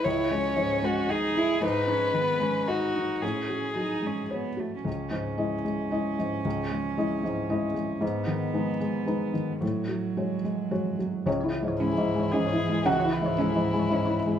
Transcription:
X:1
M:3/4
L:1/16
Q:1/4=113
K:C#m
V:1 name="Violin"
c6 F2 G4 | B8 F4 | G8 z4 | z12 |
z12 | z12 | z12 | z4 E4 G4 |
F2 E8- E2 |]
V:2 name="Synth pluck"
z12 | z12 | z12 | z12 |
z12 | z12 | z12 | C c E c C G z c C c E E |
C c E c C G z c C c E E |]
V:3 name="Cello"
E2 C6 D2 E2 | D2 C2 B,2 C2 D4 | C4 D2 C2 B,2 A,2 | C12- |
C12 | B,12 | F,8- F,2 z2 | E,12- |
E,12 |]
V:4 name="Felt piano"
z12 | z12 | z12 | z12 |
z12 | z12 | z12 | c12 |
f4 e6 z2 |]
V:5 name="Felt piano" clef=bass
[C,,E]2 G,2 G,,2 G,2 d2 E2 | G,,2 D2 D,2 G,2 d2 D2 | A,,2 F2 F,2 G,2 c2 F2 | C,,2 G,,2 [G,Ed]2 G,2 [G,Ed]2 G,,2 |
C,,2 G,2 [G,Ed]2 G,,2 [G,Ed]2 G,2 | G,,2 D,2 [G,DB]2 G,2 [G,DB]2 D,2 | A,,2 F,2 [G,Fc]2 G,2 [G,Fc]2 F,2 | (3C,,2 E2 G,,2 (3G,2 G,,2 G,2 (3G,,2 E2 G,2 |
(3C,,2 E2 G,,2 (3G,2 G,,2 G,2 (3G,,2 E2 G,2 |]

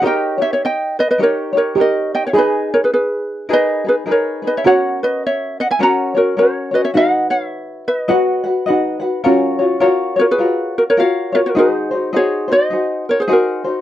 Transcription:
X:1
M:4/4
L:1/16
Q:"Swing" 1/4=104
K:B
V:1 name="Ukulele"
[d=g]2 [ce] [ce] [dg]2 [Bd] [Bd] [Ac]2 [Ac]2 [Ad]2 [dg] [ce] | [Bd]2 [Ac] [GB] [GB]4 [Bd]2 [GB]2 [Ac]2 [Bd] [ce] | [cf]2 [Bd]2 [ce]2 [df] [eg] [fa]2 [FA]2 [Ac]2 [Bd] [ce] | [df]2 [ce]4 [Bd]6 z4 |
[K:F#] z6 [Ac] [GB]3 [FA] [Ac] [ce]2 [Ac] [FA] | [G^B]4 [Gc]2 [Bd]4 [Ac] [GB] [FA]3 z |]
V:2 name="Ukulele"
[D=GAc]2 [DGc]6 [DGAc]2 [DGc]2 [DGAc]4 | [DGB]8 [DGAB]2 [DGB]2 [DGAB]2 [DGB]2 | [CFAc]8 [CFAc]2 [CFc]2 [CFAc]2 [CFc]2 | [FBf]8 [FBdf]2 [FBf]2 [FBdf]2 [FBf]2 |
[K:F#] [EFAc]2 [EFc]2 [EFAc]2 [EFc]2 [EFAc]4 [EFAc]2 [EFc]2 | [DFG^B]2 [DFB]2 [DFGB]2 [DFB]2 [DFGB]4 [DFGB]2 [DFB]2 |]
V:3 name="Steel pan"
A12 =G4 | G16 | F16 | D8 F4 D4 |
[K:F#] C16 | D16 |]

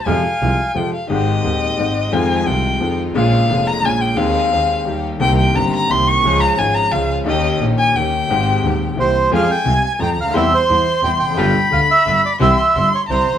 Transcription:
X:1
M:3/4
L:1/16
Q:1/4=175
K:Fm
V:1 name="Violin"
a8 g2 f2 | [K:Ab] e12 | a4 g6 z2 | f6 b2 a2 g2 |
f8- f2 z2 | g2 g2 b2 b2 c'2 d'2- | d'2 b2 a2 b2 f3 z | e4 z2 a2 g4- |
g8 z4 | [K:Fm] a8 b4 | c'12 | =b12 |
c'4 c'4 b4 |]
V:2 name="Bandoneon"
f8 z4 | [K:Ab] z12 | z12 | z12 |
z12 | z12 | z12 | z12 |
z8 c4 | [K:Fm] f2 g2 a2 a2 g2 f2 | =e2 c6 g2 g2- | g4 f2 =e4 =d2 |
=e6 d2 c4 |]
V:3 name="String section"
z12 | [K:Ab] [A,CG]4 [A,CG]4 [A,CG]4 | [A,EF]4 [A,EF]4 [A,EF]4 | [B,DA]4 [B,DA]4 [B,DA]4 |
[CEA]4 [CEA]4 [B,EG]4 | [CEB]4 [CEB]4 [CEB]4 | [DFA]4 [DFA]4 [DFA]4 | [DEG]4 [DEG]4 [DEG]4 |
[A,CG]4 [A,CG]4 [B,C=E]4 | [K:Fm] [A,CF]2 z2 [A,CF]2 z2 [A,CF]2 z2 | [G,C=E]2 z2 [G,CE]2 z2 [G,CE]2 z2 | [G,=B,F]2 z2 [G,B,F]2 z2 [G,B,F]2 z2 |
[G,C=E]2 z2 [G,CE]2 z2 [G,CE]2 z2 |]
V:4 name="Grand piano" clef=bass
[F,,C,F,A,F]2 z2 [C,,C,F,A,F]2 z2 [F,,C,F,A,F]2 z2 | [K:Ab] [A,,,A,,E,A,CG]4 [E,,,E,,E,A,CG]4 [A,,,A,,E,A,CG]4 | [F,,E,F,A,CF]4 [C,,C,E,A,CF]4 [F,,E,F,A,CF]4 | [B,,,B,,D,A,B,F]4 [F,,,F,,D,A,B,F]4 [B,,,B,,D,A,B,F]4 |
[E,,E,A,CA]4 [E,,E,A,CA]4 [E,,E,G,B,G]4 | [C,,C,E,B,CG]4 [G,,,G,,E,B,CG]4 [C,,C,E,B,CG]4 | [D,,D,F,A,DA]4 [A,,,A,,F,A,DA]4 [D,,D,F,A,DA]4 | [E,,E,B,DG]4 [B,,,B,,E,B,DG]4 [E,,E,B,DG]4 |
[A,,,A,,E,A,CG]4 [E,,,E,,E,A,CG]4 [C,,C,=E,B,CG]4 | [K:Fm] [F,,F,A,CA]2 z2 [C,,C,]2 z2 [F,,F,]2 z/2 D,,/2 =D,,/2 E,,/2 | [=E,,=E,G,CG]2 z2 [E,,E,]2 z2 [E,,E,]2 z/2 E,,/2 F,,/2 _G,,/2 | [G,,,G,,=D,G,=B,F]2 z2 [=D,,D,]2 z2 [G,,,G,,]2 z2 |
[C,,C,=E,G,CG]2 z2 [G,,,G,,]2 z2 [C,,C,]2 z/2 F,,,/2 z |]
V:5 name="Double bass" clef=bass
F,,2 z2 C,,2 z2 F,,2 z2 | [K:Ab] A,,,4 E,,4 A,,,4 | F,,4 C,,4 F,,4 | B,,,4 F,,,4 B,,,4 |
E,,4 E,,4 E,,4 | C,,4 G,,,4 C,,4 | D,,4 A,,,4 D,,4 | E,,4 B,,,4 E,,4 |
A,,,4 E,,4 C,,4 | [K:Fm] F,,2 z2 C,,2 z2 F,,2 =D,,2 | =E,,2 z2 E,,2 z2 E,,2 F,,,2 | G,,,2 z2 =D,,2 z2 G,,,2 z2 |
C,,2 z2 G,,,2 z2 C,,2 _G,,,2 |]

